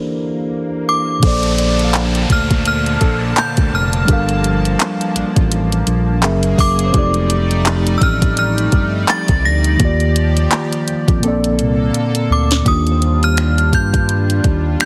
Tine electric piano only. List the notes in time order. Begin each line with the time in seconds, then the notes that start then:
Already playing: E3 A#3 D4 E4 A4 A#4 C5
1.19 A#2 A#3
1.23 A4 C5
1.27 D5
4.05 G3 D4 A4
4.11 A#4 F5
6.21 F#3 C#4 G#4 A#4
6.25 E5
6.91 F3 C4 D#4
6.95 G4 A4 D5
9.77 D#3 A#3 F4
9.83 G4 D5
11.20 A#2 A#3 C4
11.26 A4 D5
12.63 D#3 A#3 F4
12.69 D4 G4